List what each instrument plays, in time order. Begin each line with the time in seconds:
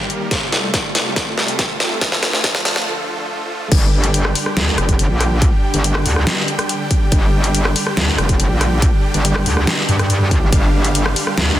Already playing: supersaw synth D#3 G3 A#3 G4 A#4
0.10 closed hi-hat
0.31 supersaw synth C3 A3 F4 A4, kick, snare, closed hi-hat
0.52 snare, closed hi-hat
0.74 kick, snare, closed hi-hat
0.95 snare, open hi-hat
1.16 kick, snare, closed hi-hat
1.38 snare
1.48 closed hi-hat
1.59 kick, snare, closed hi-hat
1.80 snare, closed hi-hat
2.01 supersaw synth D3 F3, kick, snare, closed hi-hat
2.12 snare
2.23 snare, closed hi-hat
2.33 snare
2.44 kick, snare, closed hi-hat
2.55 snare
2.65 snare, open hi-hat
2.76 snare
3.71 wobble bass G1, supersaw synth D3 G3 D4 G4 G5, kick, closed hi-hat, crash
4.04 closed hi-hat
4.14 closed hi-hat
4.25 cross-stick
4.35 open hi-hat
4.46 cross-stick
4.57 wobble bass D2, snare, closed hi-hat
4.78 wobble bass F1, cross-stick, closed hi-hat
4.89 kick, closed hi-hat
4.99 closed hi-hat
5.10 wobble bass A#1
5.21 cross-stick, closed hi-hat
5.42 kick, closed hi-hat
5.74 wobble bass G1, closed hi-hat
5.84 closed hi-hat
5.95 cross-stick
6.06 wobble bass D2, open hi-hat
6.16 cross-stick
6.27 snare, closed hi-hat
6.48 closed hi-hat
6.59 cross-stick, closed hi-hat
6.69 closed hi-hat
6.91 kick, closed hi-hat
7.12 wobble bass G1, kick, closed hi-hat
7.44 closed hi-hat
7.55 closed hi-hat
7.65 cross-stick
7.76 open hi-hat
7.87 cross-stick
7.97 wobble bass D2, snare, closed hi-hat
8.18 wobble bass F1, cross-stick, closed hi-hat
8.29 kick, closed hi-hat
8.40 closed hi-hat
8.51 wobble bass A#1
8.61 cross-stick, closed hi-hat
8.82 kick, closed hi-hat
9.14 wobble bass G1, closed hi-hat
9.25 closed hi-hat
9.36 cross-stick
9.46 wobble bass D2, open hi-hat
9.57 cross-stick
9.67 snare, closed hi-hat
9.89 wobble bass G2, closed hi-hat
9.99 cross-stick, closed hi-hat
10.10 closed hi-hat
10.31 kick, closed hi-hat
10.52 wobble bass G1, supersaw synth F5, kick, closed hi-hat
10.84 closed hi-hat
10.95 closed hi-hat
11.06 cross-stick
11.16 open hi-hat
11.27 cross-stick
11.38 wobble bass D2, snare, closed hi-hat